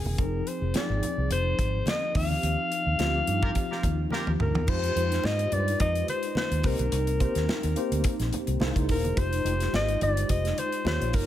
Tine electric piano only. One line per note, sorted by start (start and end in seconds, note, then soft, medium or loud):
0.00 0.20 D#3 medium
0.00 0.19 C4 medium
0.00 0.20 D4 medium
0.00 0.20 A4 medium
0.00 0.21 A#4 loud
0.18 0.58 F3 medium
0.18 0.58 C4 medium
0.18 0.59 D#4 medium
0.18 0.59 G#4 medium
0.74 1.53 F3 medium
0.74 1.53 C4 medium
0.74 1.53 D#4 medium
0.74 1.53 G#4 medium
2.15 2.84 F3 medium
2.15 2.84 C4 medium
2.15 2.84 D#4 medium
2.15 2.84 G4 medium
2.99 3.78 F3 medium
2.99 3.78 C4 medium
2.99 3.78 D#4 medium
2.99 3.07 F4 medium
3.07 3.81 G4 medium
4.68 4.88 G#3 medium
4.68 4.88 D#4 medium
4.68 4.88 F4 medium
4.68 4.88 G4 medium
4.68 4.88 C5 medium
4.95 5.35 G#3 medium
4.95 5.36 D#4 medium
4.95 5.36 F4 medium
4.95 5.36 G4 medium
4.95 5.36 C5 medium
5.52 6.30 G#3 medium
5.52 6.30 D#4 medium
5.52 6.30 F4 medium
5.52 6.31 G4 medium
5.52 5.60 B4 medium
5.60 6.34 C5 medium
6.64 7.10 A#3 medium
6.64 7.10 C4 medium
6.64 7.10 D#4 medium
6.64 7.10 G4 medium
6.64 7.11 C5 medium
7.20 7.60 A#3 medium
7.20 7.60 C4 medium
7.20 7.60 D#4 medium
7.20 7.60 G4 medium
7.20 7.60 C5 medium
7.76 8.54 A#3 medium
7.76 8.55 C4 medium
7.76 8.55 D#4 medium
7.76 8.55 G4 medium
7.76 8.55 C5 medium
8.60 9.06 A#3 loud
8.60 9.06 D#4 loud
8.60 9.07 E4 medium
8.60 9.07 G#4 medium
8.60 9.07 C5 loud
9.16 9.37 G#3 medium
9.16 9.37 D#4 medium
9.16 9.37 F4 medium
9.16 9.37 G4 medium
9.16 9.37 C5 medium
9.44 9.84 G#3 medium
9.44 9.85 D#4 medium
9.44 9.85 F4 medium
9.44 9.85 G4 medium
9.44 9.85 C5 medium
10.00 10.79 G#3 medium
10.00 10.79 D#4 medium
10.00 10.79 F4 medium
10.00 10.80 G4 medium
10.00 10.80 C5 medium
10.85 11.26 A#3 medium
10.85 11.26 D#4 medium
10.85 11.26 F4 medium
10.85 11.26 G4 medium
10.85 11.26 C#5 loud